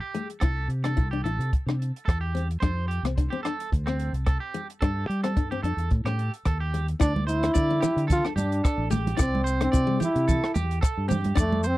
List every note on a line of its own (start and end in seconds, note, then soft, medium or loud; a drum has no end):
0.00 0.27 G4 medium
0.15 0.30 A3 medium
0.15 closed hi-hat soft
0.30 closed hi-hat soft
0.40 0.66 C2 medium
0.40 0.58 E4 medium
0.40 0.67 A4 medium
0.40 kick medium
0.40 cross-stick medium
0.40 closed hi-hat soft
0.68 0.98 C3 medium
0.68 closed hi-hat soft
0.84 0.92 D4 medium
0.84 1.10 A4 medium
0.84 cross-stick medium
0.84 closed hi-hat soft
0.97 1.21 C2 medium
0.97 1.05 E4 medium
0.97 kick medium
0.97 closed hi-hat soft
1.11 1.20 D4 medium
1.11 1.24 G4 medium
1.24 1.37 A1 medium
1.24 1.40 E4 medium
1.24 1.50 A4 medium
1.24 closed hi-hat soft
1.39 1.50 C3 medium
1.39 closed hi-hat soft
1.53 kick medium
1.53 closed hi-hat soft
1.66 1.91 C3 medium
1.66 1.83 D4 medium
1.66 cross-stick medium
1.82 closed hi-hat soft
1.96 closed hi-hat soft
2.05 2.55 E2 medium
2.05 2.20 A4 medium
2.05 kick medium
2.05 cross-stick medium
2.05 closed hi-hat soft
2.21 2.47 G4 medium
2.35 2.50 C4 medium
2.35 closed hi-hat soft
2.51 closed hi-hat soft
2.60 2.99 F2 medium
2.60 2.77 D4 medium
2.60 2.87 C5 medium
2.60 kick medium
2.60 cross-stick medium
2.60 closed hi-hat soft
2.88 3.03 G4 medium
2.88 closed hi-hat soft
3.03 3.27 C2 medium
3.03 3.12 C4 medium
3.03 cross-stick medium
3.03 closed hi-hat soft
3.17 3.25 D4 medium
3.17 kick medium
3.17 closed hi-hat soft
3.30 3.39 C4 medium
3.30 3.43 G4 medium
3.43 3.60 D4 medium
3.43 3.69 A4 medium
3.43 cross-stick medium
3.43 closed hi-hat soft
3.60 closed hi-hat soft
3.72 4.09 D2 medium
3.72 kick medium
3.72 closed hi-hat soft
3.86 4.12 C4 medium
3.86 4.02 C4 medium
3.86 cross-stick medium
3.99 closed hi-hat soft
4.13 4.37 C2 medium
4.13 closed hi-hat soft
4.26 4.40 A4 medium
4.26 kick medium
4.26 cross-stick medium
4.26 closed hi-hat soft
4.40 4.67 G4 medium
4.54 muted steel-string acoustic guitar stroke medium
4.54 closed hi-hat soft
4.70 closed hi-hat soft
4.81 5.05 G2 medium
4.81 4.97 D4 medium
4.81 5.07 A4 medium
4.81 kick medium
4.81 cross-stick medium
4.81 closed hi-hat soft
5.07 5.37 G3 medium
5.07 5.22 G4 medium
5.07 closed hi-hat soft
5.23 5.31 C4 medium
5.23 5.49 A4 medium
5.23 cross-stick medium
5.23 closed hi-hat soft
5.37 5.60 G2 medium
5.37 5.44 D4 medium
5.37 kick medium
5.37 closed hi-hat soft
5.51 5.58 C4 medium
5.51 5.63 G4 medium
5.63 5.76 F2 medium
5.63 5.80 D4 medium
5.63 5.89 A4 medium
5.63 closed hi-hat soft
5.77 5.88 E2 medium
5.77 closed hi-hat soft
5.90 6.04 A2 medium
5.90 kick medium
5.90 closed hi-hat soft
6.04 6.29 A2 medium
6.04 6.21 C#4 medium
6.04 6.31 G4 medium
6.04 cross-stick medium
6.19 closed hi-hat soft
6.34 closed hi-hat soft
6.45 6.93 D#2 medium
6.45 6.60 A4 medium
6.45 kick medium
6.45 cross-stick medium
6.45 closed hi-hat soft
6.60 6.86 G4 medium
6.74 muted steel-string acoustic guitar stroke medium
6.74 closed hi-hat soft
6.88 closed hi-hat soft
7.00 7.48 D2 medium
7.00 7.13 D4 medium
7.00 7.15 E4 medium
7.00 7.26 D5 medium
7.00 kick medium
7.00 cross-stick medium
7.00 closed hi-hat medium
7.00 maracas medium
7.16 high conga medium
7.27 8.06 E4 medium
7.27 7.53 C5 medium
7.27 closed hi-hat medium
7.27 maracas medium
7.43 7.50 D4 medium
7.43 cross-stick medium
7.43 closed hi-hat soft
7.54 7.79 D3 medium
7.54 7.63 E4 medium
7.54 7.80 D5 medium
7.54 kick medium
7.54 closed hi-hat soft
7.54 maracas medium
7.70 7.77 D4 medium
7.80 7.98 E4 medium
7.80 8.07 G4 medium
7.80 cross-stick medium
7.80 closed hi-hat medium
7.80 low conga medium
7.80 maracas medium
7.96 8.20 D3 medium
7.96 closed hi-hat medium
8.08 8.34 A4 medium
8.08 kick medium
8.08 closed hi-hat medium
8.08 low conga medium
8.08 maracas medium
8.13 8.24 F4 loud
8.25 8.40 D4 medium
8.25 cross-stick medium
8.36 8.60 G2 loud
8.36 8.88 D4 medium
8.36 8.62 G4 medium
8.36 closed hi-hat medium
8.36 high conga medium
8.36 maracas medium
8.52 closed hi-hat soft
8.64 8.90 A4 medium
8.64 kick medium
8.64 cross-stick medium
8.64 closed hi-hat soft
8.64 maracas medium
8.78 9.13 A1 medium
8.90 9.06 A3 medium
8.90 9.17 G4 medium
8.90 closed hi-hat soft
8.90 high conga medium
8.90 low conga medium
8.90 maracas medium
9.07 closed hi-hat soft
9.07 high conga medium
9.17 9.67 C2 medium
9.17 9.59 C4 medium
9.17 9.33 E4 medium
9.17 9.43 D5 medium
9.17 kick medium
9.17 cross-stick medium
9.17 closed hi-hat soft
9.17 maracas loud
9.35 high conga medium
9.44 9.71 C5 medium
9.44 closed hi-hat soft
9.44 maracas medium
9.61 9.99 C4 medium
9.61 9.68 D4 medium
9.61 cross-stick medium
9.61 closed hi-hat soft
9.72 9.97 C3 medium
9.72 9.81 E4 medium
9.72 9.98 D5 medium
9.72 kick medium
9.72 closed hi-hat soft
9.72 maracas loud
9.87 9.94 G3 medium
10.00 10.15 E4 medium
10.00 10.26 G4 medium
10.00 closed hi-hat soft
10.00 low conga medium
10.00 maracas medium
10.04 10.53 E4 medium
10.16 10.39 C3 medium
10.16 closed hi-hat soft
10.28 10.54 A4 medium
10.28 kick medium
10.28 closed hi-hat soft
10.28 low conga medium
10.28 maracas medium
10.44 cross-stick medium
10.54 10.79 E2 loud
10.54 10.81 G4 medium
10.54 closed hi-hat soft
10.54 high conga medium
10.54 maracas medium
10.71 closed hi-hat soft
10.81 11.08 A4 medium
10.81 kick medium
10.81 cross-stick medium
10.81 closed hi-hat soft
10.81 maracas medium
10.98 11.32 G2 medium
11.09 11.24 C4 medium
11.09 11.35 G4 medium
11.09 closed hi-hat soft
11.09 high conga medium
11.09 low conga medium
11.09 maracas medium
11.24 closed hi-hat soft
11.24 high conga medium
11.35 11.78 F2 medium
11.35 11.51 D4 medium
11.35 11.62 D5 medium
11.35 kick medium
11.35 cross-stick medium
11.35 closed hi-hat soft
11.35 maracas medium
11.39 11.68 A3 medium
11.52 high conga medium
11.63 11.78 C4 loud
11.63 11.78 C5 medium
11.63 closed hi-hat medium
11.63 maracas medium